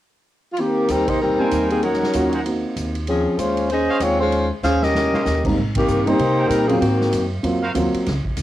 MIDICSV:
0, 0, Header, 1, 7, 480
1, 0, Start_track
1, 0, Key_signature, -4, "major"
1, 0, Tempo, 312012
1, 883, Time_signature, 4, 2, 24, 8
1, 12956, End_track
2, 0, Start_track
2, 0, Title_t, "Trumpet section"
2, 0, Program_c, 0, 61
2, 2132, Note_on_c, 0, 80, 69
2, 2133, Note_on_c, 0, 72, 59
2, 2134, Note_on_c, 0, 79, 55
2, 2136, Note_on_c, 0, 70, 61
2, 2764, Note_off_c, 0, 80, 0
2, 2765, Note_off_c, 0, 72, 0
2, 2765, Note_off_c, 0, 79, 0
2, 2767, Note_off_c, 0, 70, 0
2, 2808, Note_on_c, 0, 73, 53
2, 2808, Note_on_c, 0, 78, 66
2, 2809, Note_on_c, 0, 70, 57
2, 2809, Note_on_c, 0, 75, 54
2, 3518, Note_off_c, 0, 70, 0
2, 3518, Note_off_c, 0, 73, 0
2, 3518, Note_off_c, 0, 75, 0
2, 3518, Note_off_c, 0, 78, 0
2, 3576, Note_on_c, 0, 68, 63
2, 3576, Note_on_c, 0, 70, 58
2, 3577, Note_on_c, 0, 72, 59
2, 3578, Note_on_c, 0, 78, 70
2, 3703, Note_off_c, 0, 68, 0
2, 3703, Note_off_c, 0, 70, 0
2, 3704, Note_off_c, 0, 72, 0
2, 3704, Note_off_c, 0, 78, 0
2, 5972, Note_on_c, 0, 68, 67
2, 5974, Note_on_c, 0, 77, 77
2, 5975, Note_on_c, 0, 73, 65
2, 5976, Note_on_c, 0, 72, 59
2, 6101, Note_off_c, 0, 68, 0
2, 6103, Note_off_c, 0, 72, 0
2, 6103, Note_off_c, 0, 73, 0
2, 6103, Note_off_c, 0, 77, 0
2, 7889, Note_on_c, 0, 77, 73
2, 7894, Note_on_c, 0, 67, 66
2, 7894, Note_on_c, 0, 73, 58
2, 7895, Note_on_c, 0, 72, 60
2, 8020, Note_off_c, 0, 77, 0
2, 8022, Note_off_c, 0, 67, 0
2, 8022, Note_off_c, 0, 73, 0
2, 8023, Note_off_c, 0, 72, 0
2, 9813, Note_on_c, 0, 70, 60
2, 9814, Note_on_c, 0, 79, 73
2, 9816, Note_on_c, 0, 72, 64
2, 9817, Note_on_c, 0, 68, 62
2, 10445, Note_off_c, 0, 70, 0
2, 10445, Note_off_c, 0, 79, 0
2, 10447, Note_off_c, 0, 68, 0
2, 10447, Note_off_c, 0, 72, 0
2, 11720, Note_on_c, 0, 66, 70
2, 11722, Note_on_c, 0, 77, 79
2, 11724, Note_on_c, 0, 70, 65
2, 11725, Note_on_c, 0, 72, 67
2, 11853, Note_off_c, 0, 66, 0
2, 11854, Note_off_c, 0, 77, 0
2, 11855, Note_off_c, 0, 70, 0
2, 11856, Note_off_c, 0, 72, 0
2, 12956, End_track
3, 0, Start_track
3, 0, Title_t, "Saxophone section"
3, 0, Program_c, 1, 65
3, 820, Note_on_c, 1, 65, 53
3, 894, Note_off_c, 1, 65, 0
3, 924, Note_on_c, 1, 51, 59
3, 924, Note_on_c, 1, 58, 62
3, 924, Note_on_c, 1, 60, 60
3, 932, Note_on_c, 1, 67, 71
3, 1374, Note_off_c, 1, 60, 0
3, 1383, Note_off_c, 1, 51, 0
3, 1383, Note_off_c, 1, 58, 0
3, 1387, Note_off_c, 1, 67, 0
3, 1393, Note_on_c, 1, 60, 68
3, 1393, Note_on_c, 1, 63, 64
3, 1404, Note_on_c, 1, 55, 70
3, 1404, Note_on_c, 1, 70, 76
3, 1661, Note_off_c, 1, 63, 0
3, 1668, Note_off_c, 1, 60, 0
3, 1673, Note_off_c, 1, 55, 0
3, 1674, Note_off_c, 1, 70, 0
3, 1676, Note_on_c, 1, 58, 57
3, 1679, Note_on_c, 1, 63, 70
3, 1680, Note_on_c, 1, 67, 63
3, 1680, Note_on_c, 1, 72, 72
3, 1854, Note_off_c, 1, 58, 0
3, 1856, Note_off_c, 1, 63, 0
3, 1856, Note_off_c, 1, 67, 0
3, 1856, Note_off_c, 1, 72, 0
3, 1873, Note_on_c, 1, 60, 63
3, 1875, Note_on_c, 1, 55, 69
3, 1878, Note_on_c, 1, 70, 71
3, 1882, Note_on_c, 1, 63, 67
3, 2575, Note_off_c, 1, 60, 0
3, 2576, Note_off_c, 1, 55, 0
3, 2578, Note_off_c, 1, 70, 0
3, 2580, Note_off_c, 1, 63, 0
3, 2636, Note_on_c, 1, 58, 57
3, 2642, Note_on_c, 1, 60, 53
3, 2643, Note_on_c, 1, 51, 56
3, 2646, Note_on_c, 1, 68, 66
3, 2814, Note_off_c, 1, 58, 0
3, 2817, Note_off_c, 1, 60, 0
3, 2818, Note_off_c, 1, 51, 0
3, 2819, Note_off_c, 1, 68, 0
3, 2835, Note_on_c, 1, 70, 67
3, 2838, Note_on_c, 1, 61, 59
3, 2841, Note_on_c, 1, 54, 60
3, 2841, Note_on_c, 1, 63, 55
3, 3779, Note_off_c, 1, 70, 0
3, 3781, Note_off_c, 1, 61, 0
3, 3782, Note_off_c, 1, 54, 0
3, 3782, Note_off_c, 1, 63, 0
3, 4748, Note_on_c, 1, 68, 63
3, 4750, Note_on_c, 1, 61, 56
3, 4752, Note_on_c, 1, 60, 58
3, 4753, Note_on_c, 1, 53, 58
3, 5183, Note_off_c, 1, 68, 0
3, 5184, Note_off_c, 1, 61, 0
3, 5185, Note_off_c, 1, 60, 0
3, 5186, Note_off_c, 1, 53, 0
3, 5217, Note_on_c, 1, 56, 56
3, 5217, Note_on_c, 1, 65, 65
3, 5218, Note_on_c, 1, 61, 62
3, 5219, Note_on_c, 1, 72, 75
3, 5691, Note_off_c, 1, 56, 0
3, 5691, Note_off_c, 1, 61, 0
3, 5691, Note_off_c, 1, 65, 0
3, 5692, Note_off_c, 1, 72, 0
3, 5717, Note_on_c, 1, 72, 73
3, 5722, Note_on_c, 1, 61, 62
3, 5722, Note_on_c, 1, 68, 72
3, 5725, Note_on_c, 1, 75, 75
3, 6148, Note_off_c, 1, 72, 0
3, 6151, Note_off_c, 1, 61, 0
3, 6151, Note_off_c, 1, 68, 0
3, 6153, Note_off_c, 1, 75, 0
3, 6195, Note_on_c, 1, 56, 71
3, 6195, Note_on_c, 1, 60, 66
3, 6196, Note_on_c, 1, 65, 67
3, 6198, Note_on_c, 1, 73, 85
3, 6453, Note_off_c, 1, 56, 0
3, 6456, Note_off_c, 1, 65, 0
3, 6470, Note_off_c, 1, 60, 0
3, 6472, Note_off_c, 1, 73, 0
3, 6472, Note_on_c, 1, 56, 68
3, 6474, Note_on_c, 1, 65, 67
3, 6474, Note_on_c, 1, 72, 80
3, 6477, Note_on_c, 1, 61, 71
3, 6910, Note_off_c, 1, 56, 0
3, 6912, Note_off_c, 1, 65, 0
3, 6912, Note_off_c, 1, 72, 0
3, 6913, Note_off_c, 1, 61, 0
3, 7139, Note_on_c, 1, 61, 69
3, 7140, Note_on_c, 1, 68, 74
3, 7142, Note_on_c, 1, 72, 69
3, 7142, Note_on_c, 1, 77, 88
3, 7402, Note_off_c, 1, 61, 0
3, 7403, Note_off_c, 1, 68, 0
3, 7404, Note_off_c, 1, 72, 0
3, 7404, Note_off_c, 1, 77, 0
3, 7442, Note_on_c, 1, 70, 67
3, 7443, Note_on_c, 1, 67, 62
3, 7446, Note_on_c, 1, 75, 80
3, 7450, Note_on_c, 1, 61, 61
3, 8388, Note_off_c, 1, 70, 0
3, 8389, Note_off_c, 1, 67, 0
3, 8390, Note_off_c, 1, 75, 0
3, 8392, Note_off_c, 1, 61, 0
3, 8870, Note_on_c, 1, 51, 69
3, 8871, Note_on_c, 1, 58, 63
3, 8872, Note_on_c, 1, 60, 60
3, 8881, Note_on_c, 1, 67, 80
3, 9309, Note_off_c, 1, 51, 0
3, 9310, Note_off_c, 1, 58, 0
3, 9311, Note_off_c, 1, 60, 0
3, 9315, Note_off_c, 1, 67, 0
3, 9336, Note_on_c, 1, 72, 92
3, 9339, Note_on_c, 1, 67, 75
3, 9344, Note_on_c, 1, 58, 69
3, 9346, Note_on_c, 1, 63, 71
3, 9965, Note_off_c, 1, 63, 0
3, 9983, Note_on_c, 1, 63, 75
3, 9986, Note_on_c, 1, 60, 68
3, 9991, Note_on_c, 1, 70, 91
3, 9995, Note_on_c, 1, 55, 73
3, 10005, Note_off_c, 1, 72, 0
3, 10006, Note_off_c, 1, 67, 0
3, 10009, Note_off_c, 1, 58, 0
3, 10256, Note_off_c, 1, 60, 0
3, 10273, Note_on_c, 1, 68, 79
3, 10275, Note_on_c, 1, 60, 64
3, 10276, Note_on_c, 1, 51, 64
3, 10278, Note_on_c, 1, 58, 69
3, 10284, Note_off_c, 1, 63, 0
3, 10287, Note_off_c, 1, 70, 0
3, 10289, Note_off_c, 1, 55, 0
3, 10458, Note_off_c, 1, 60, 0
3, 10465, Note_off_c, 1, 58, 0
3, 10466, Note_off_c, 1, 51, 0
3, 10473, Note_off_c, 1, 68, 0
3, 10477, Note_on_c, 1, 60, 54
3, 10481, Note_on_c, 1, 66, 62
3, 10483, Note_on_c, 1, 58, 57
3, 10484, Note_on_c, 1, 51, 58
3, 11196, Note_off_c, 1, 60, 0
3, 11198, Note_off_c, 1, 66, 0
3, 11199, Note_off_c, 1, 58, 0
3, 11200, Note_off_c, 1, 51, 0
3, 12956, End_track
4, 0, Start_track
4, 0, Title_t, "Grand piano"
4, 0, Program_c, 2, 0
4, 2142, Note_on_c, 2, 58, 46
4, 2142, Note_on_c, 2, 60, 40
4, 2151, Note_on_c, 2, 63, 45
4, 2156, Note_on_c, 2, 55, 48
4, 2769, Note_off_c, 2, 58, 0
4, 2769, Note_off_c, 2, 60, 0
4, 2774, Note_off_c, 2, 63, 0
4, 2776, Note_off_c, 2, 55, 0
4, 3297, Note_on_c, 2, 58, 49
4, 3303, Note_on_c, 2, 61, 45
4, 3304, Note_on_c, 2, 65, 47
4, 3314, Note_on_c, 2, 66, 57
4, 3551, Note_off_c, 2, 58, 0
4, 3554, Note_off_c, 2, 61, 0
4, 3555, Note_off_c, 2, 65, 0
4, 3560, Note_off_c, 2, 66, 0
4, 3770, Note_on_c, 2, 58, 36
4, 3782, Note_on_c, 2, 60, 32
4, 3782, Note_on_c, 2, 63, 35
4, 3787, Note_on_c, 2, 66, 38
4, 4479, Note_off_c, 2, 58, 0
4, 4485, Note_off_c, 2, 60, 0
4, 4485, Note_off_c, 2, 63, 0
4, 4487, Note_off_c, 2, 66, 0
4, 8391, Note_on_c, 2, 44, 46
4, 8392, Note_on_c, 2, 55, 40
4, 8394, Note_on_c, 2, 58, 44
4, 8400, Note_on_c, 2, 60, 41
4, 8405, Note_on_c, 2, 63, 57
4, 8554, Note_off_c, 2, 44, 0
4, 8554, Note_off_c, 2, 55, 0
4, 8556, Note_off_c, 2, 58, 0
4, 8558, Note_off_c, 2, 60, 0
4, 8561, Note_off_c, 2, 63, 0
4, 9336, Note_on_c, 2, 58, 56
4, 9338, Note_on_c, 2, 55, 54
4, 9350, Note_on_c, 2, 63, 62
4, 9351, Note_on_c, 2, 60, 47
4, 9506, Note_off_c, 2, 58, 0
4, 9507, Note_off_c, 2, 55, 0
4, 9513, Note_off_c, 2, 63, 0
4, 9514, Note_off_c, 2, 60, 0
4, 10299, Note_on_c, 2, 54, 58
4, 10300, Note_on_c, 2, 60, 47
4, 10301, Note_on_c, 2, 58, 46
4, 10306, Note_on_c, 2, 65, 60
4, 10467, Note_off_c, 2, 54, 0
4, 10468, Note_off_c, 2, 58, 0
4, 10468, Note_off_c, 2, 60, 0
4, 10471, Note_off_c, 2, 65, 0
4, 11434, Note_on_c, 2, 54, 45
4, 11437, Note_on_c, 2, 60, 46
4, 11442, Note_on_c, 2, 65, 58
4, 11445, Note_on_c, 2, 58, 42
4, 11699, Note_off_c, 2, 54, 0
4, 11701, Note_off_c, 2, 60, 0
4, 11704, Note_off_c, 2, 65, 0
4, 11705, Note_off_c, 2, 58, 0
4, 11916, Note_on_c, 2, 54, 55
4, 11925, Note_on_c, 2, 58, 46
4, 11927, Note_on_c, 2, 60, 47
4, 11934, Note_on_c, 2, 65, 50
4, 12399, Note_off_c, 2, 54, 0
4, 12403, Note_off_c, 2, 58, 0
4, 12404, Note_off_c, 2, 60, 0
4, 12408, Note_off_c, 2, 65, 0
4, 12956, End_track
5, 0, Start_track
5, 0, Title_t, "Upright bass"
5, 0, Program_c, 3, 32
5, 1369, Note_on_c, 3, 39, 59
5, 2118, Note_off_c, 3, 39, 0
5, 2329, Note_on_c, 3, 39, 66
5, 3078, Note_off_c, 3, 39, 0
5, 3291, Note_on_c, 3, 39, 55
5, 4039, Note_off_c, 3, 39, 0
5, 4250, Note_on_c, 3, 39, 68
5, 4999, Note_off_c, 3, 39, 0
5, 5191, Note_on_c, 3, 39, 64
5, 5949, Note_off_c, 3, 39, 0
5, 6153, Note_on_c, 3, 39, 69
5, 6910, Note_off_c, 3, 39, 0
5, 7122, Note_on_c, 3, 39, 63
5, 7875, Note_off_c, 3, 39, 0
5, 8085, Note_on_c, 3, 39, 60
5, 8531, Note_off_c, 3, 39, 0
5, 8576, Note_on_c, 3, 44, 76
5, 9036, Note_off_c, 3, 44, 0
5, 9048, Note_on_c, 3, 43, 67
5, 9502, Note_off_c, 3, 43, 0
5, 9511, Note_on_c, 3, 48, 61
5, 9983, Note_off_c, 3, 48, 0
5, 9991, Note_on_c, 3, 46, 80
5, 10463, Note_off_c, 3, 46, 0
5, 10481, Note_on_c, 3, 44, 68
5, 10947, Note_off_c, 3, 44, 0
5, 10954, Note_on_c, 3, 42, 67
5, 11424, Note_off_c, 3, 42, 0
5, 11437, Note_on_c, 3, 41, 68
5, 11905, Note_off_c, 3, 41, 0
5, 11921, Note_on_c, 3, 39, 80
5, 12191, Note_off_c, 3, 39, 0
5, 12416, Note_on_c, 3, 37, 76
5, 12679, Note_off_c, 3, 37, 0
5, 12881, Note_on_c, 3, 36, 70
5, 12956, Note_off_c, 3, 36, 0
5, 12956, End_track
6, 0, Start_track
6, 0, Title_t, "Muted upright bass strokes"
6, 12212, Note_on_c, 9, 29, 29
6, 12366, Note_off_c, 9, 29, 0
6, 12692, Note_on_c, 9, 29, 31
6, 12846, Note_off_c, 9, 29, 0
6, 12956, End_track
7, 0, Start_track
7, 0, Title_t, "Drums"
7, 871, Note_on_c, 9, 51, 41
7, 1025, Note_off_c, 9, 51, 0
7, 1360, Note_on_c, 9, 44, 45
7, 1360, Note_on_c, 9, 51, 46
7, 1513, Note_off_c, 9, 44, 0
7, 1513, Note_off_c, 9, 51, 0
7, 1655, Note_on_c, 9, 51, 51
7, 1657, Note_on_c, 9, 36, 45
7, 1809, Note_off_c, 9, 51, 0
7, 1811, Note_off_c, 9, 36, 0
7, 2326, Note_on_c, 9, 44, 45
7, 2326, Note_on_c, 9, 51, 52
7, 2480, Note_off_c, 9, 44, 0
7, 2480, Note_off_c, 9, 51, 0
7, 2620, Note_on_c, 9, 51, 36
7, 2774, Note_off_c, 9, 51, 0
7, 2809, Note_on_c, 9, 51, 40
7, 2963, Note_off_c, 9, 51, 0
7, 2972, Note_on_c, 9, 38, 24
7, 3124, Note_off_c, 9, 38, 0
7, 3124, Note_on_c, 9, 38, 35
7, 3278, Note_off_c, 9, 38, 0
7, 3280, Note_on_c, 9, 44, 48
7, 3280, Note_on_c, 9, 51, 58
7, 3434, Note_off_c, 9, 44, 0
7, 3434, Note_off_c, 9, 51, 0
7, 3575, Note_on_c, 9, 51, 37
7, 3729, Note_off_c, 9, 51, 0
7, 3778, Note_on_c, 9, 51, 47
7, 3932, Note_off_c, 9, 51, 0
7, 4253, Note_on_c, 9, 44, 41
7, 4253, Note_on_c, 9, 51, 48
7, 4406, Note_off_c, 9, 44, 0
7, 4406, Note_off_c, 9, 51, 0
7, 4537, Note_on_c, 9, 51, 37
7, 4691, Note_off_c, 9, 51, 0
7, 4722, Note_on_c, 9, 51, 43
7, 4876, Note_off_c, 9, 51, 0
7, 5208, Note_on_c, 9, 44, 51
7, 5208, Note_on_c, 9, 51, 53
7, 5362, Note_off_c, 9, 44, 0
7, 5362, Note_off_c, 9, 51, 0
7, 5491, Note_on_c, 9, 51, 35
7, 5645, Note_off_c, 9, 51, 0
7, 5684, Note_on_c, 9, 51, 42
7, 5838, Note_off_c, 9, 51, 0
7, 6156, Note_on_c, 9, 44, 47
7, 6156, Note_on_c, 9, 51, 50
7, 6309, Note_off_c, 9, 44, 0
7, 6309, Note_off_c, 9, 51, 0
7, 6648, Note_on_c, 9, 51, 40
7, 6802, Note_off_c, 9, 51, 0
7, 7125, Note_on_c, 9, 44, 49
7, 7132, Note_on_c, 9, 38, 33
7, 7279, Note_off_c, 9, 44, 0
7, 7286, Note_off_c, 9, 38, 0
7, 7423, Note_on_c, 9, 38, 45
7, 7577, Note_off_c, 9, 38, 0
7, 7615, Note_on_c, 9, 38, 62
7, 7769, Note_off_c, 9, 38, 0
7, 7906, Note_on_c, 9, 38, 55
7, 8060, Note_off_c, 9, 38, 0
7, 8085, Note_on_c, 9, 44, 52
7, 8093, Note_on_c, 9, 38, 49
7, 8239, Note_off_c, 9, 44, 0
7, 8246, Note_off_c, 9, 38, 0
7, 8379, Note_on_c, 9, 49, 56
7, 8380, Note_on_c, 9, 36, 62
7, 8533, Note_off_c, 9, 49, 0
7, 8534, Note_off_c, 9, 36, 0
7, 8843, Note_on_c, 9, 51, 66
7, 8858, Note_on_c, 9, 36, 70
7, 8997, Note_off_c, 9, 51, 0
7, 9011, Note_off_c, 9, 36, 0
7, 9047, Note_on_c, 9, 44, 53
7, 9201, Note_off_c, 9, 44, 0
7, 9339, Note_on_c, 9, 51, 36
7, 9492, Note_off_c, 9, 51, 0
7, 9527, Note_on_c, 9, 51, 46
7, 9681, Note_off_c, 9, 51, 0
7, 10007, Note_on_c, 9, 44, 47
7, 10007, Note_on_c, 9, 51, 55
7, 10160, Note_off_c, 9, 44, 0
7, 10160, Note_off_c, 9, 51, 0
7, 10297, Note_on_c, 9, 51, 41
7, 10451, Note_off_c, 9, 51, 0
7, 10491, Note_on_c, 9, 51, 51
7, 10645, Note_off_c, 9, 51, 0
7, 10787, Note_on_c, 9, 38, 33
7, 10941, Note_off_c, 9, 38, 0
7, 10963, Note_on_c, 9, 44, 42
7, 10963, Note_on_c, 9, 51, 61
7, 11117, Note_off_c, 9, 44, 0
7, 11117, Note_off_c, 9, 51, 0
7, 11443, Note_on_c, 9, 51, 53
7, 11597, Note_off_c, 9, 51, 0
7, 11923, Note_on_c, 9, 44, 46
7, 11923, Note_on_c, 9, 51, 58
7, 12077, Note_off_c, 9, 44, 0
7, 12077, Note_off_c, 9, 51, 0
7, 12221, Note_on_c, 9, 51, 38
7, 12375, Note_off_c, 9, 51, 0
7, 12406, Note_on_c, 9, 51, 44
7, 12414, Note_on_c, 9, 38, 31
7, 12560, Note_off_c, 9, 51, 0
7, 12568, Note_off_c, 9, 38, 0
7, 12692, Note_on_c, 9, 36, 47
7, 12846, Note_off_c, 9, 36, 0
7, 12871, Note_on_c, 9, 44, 49
7, 12871, Note_on_c, 9, 51, 50
7, 12956, Note_off_c, 9, 44, 0
7, 12956, Note_off_c, 9, 51, 0
7, 12956, End_track
0, 0, End_of_file